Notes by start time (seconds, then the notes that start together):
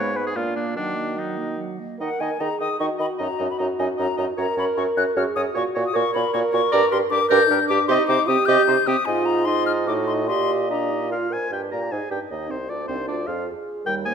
Already playing: G#2 G#3 B3 C#5 F5
0.16 B3 B4 G#5
0.27 G#4
0.36 A#2 A#3 D4 F4 D5
0.56 A#3 D4 F5
0.76 D#3 F#3 D4 F#4 F#5
0.96 A#3 D#5
1.16 F#3 D#4 F#5
1.37 A#3 D#5
1.58 F#3 F#5
1.79 A#3 D#5
1.99 D#3 D#4 A#4 D#5 F#5
2.20 D#3 D#4 D#5 G#5
2.40 D#3 D#4 G#4 D#5 A#5
2.60 D#3 D#4 D#5 D#6
2.79 D#3 D#4 F#4 D#5 C#6
2.98 D#3 D#4 D#5 B5
3.18 F#2 D#4 D#5 A#5
3.38 F#2 D#4 D#5
3.50 B5
3.58 F#2 D#4 D#5 A#5
3.79 F#2 D#4 D#5 G#5
3.97 F#2 D#4 D#5 A#5
4.17 F#2 D#4 D#5 A#5
4.37 F#2 F#4 A#4 C#5 A#5
4.56 F#2 F#4 C#5 B5
4.77 F#2 F#4 C#5 C#6
4.97 F#2 F#4 C#5 F#6
5.16 F#2 F#4 G#4 C#5 F6
5.36 F#2 F#4 C#5 D#6
5.54 A#2 F#4 C#5 C#6
5.75 A#2 F#4 C#5
5.86 D#6
5.93 A#2 F#4 A#4 C#5 C#6
6.13 A#2 F#4 C#5 B5
6.33 A#2 F#4 C#5 C#6
6.52 A#2 F#4 C#5 C#6
6.72 G2 A#4 D5 A#5
6.91 G2 G4 A#4 C6
7.10 G2 D4 G4 A#4 D6
7.30 G2 A#4 D5 G6
7.49 G2 D4 G4 A#4
7.68 G2 D4 G4 D6
7.88 C3 D#4 G4 D#5 C6
8.07 C3 D#4 C5 D6
8.27 C3 C4 G4 D#6
8.46 C3 G4 D#5 G6
8.67 C3 D#4 C5
8.87 C3 C4 G4 D#6
9.05 G#2 F4 D#5 G#5
9.25 A#5
9.45 D#4 F4 D#5 C6
9.66 F6
9.86 A2 F#4 D#5 D6
10.07 C6
10.28 A#2 G4 D#5 C6
10.70 D4 G4 D#5 A#5
10.91 D#4
11.10 F4 A#4 F5
11.30 A#4 C5 G#5
11.51 G2 G4 A#4 G5
11.71 A#2 A#4 D5 A#5
11.90 G#2 D#4 G#4 C5 G#5
12.10 G2 G4 A#4 G5
12.29 D#2 D#4 G4 D#5
12.49 C2 C4 D#4 C5
12.68 D2 D4 F4 D5
12.88 C2 C4 D#4 C5
13.08 D2 D4 F4 D5
13.27 F2 F4 G#4 F5
13.48 G#4
13.85 D#2 G3 A#4 G5
14.05 A#3 C5 G#5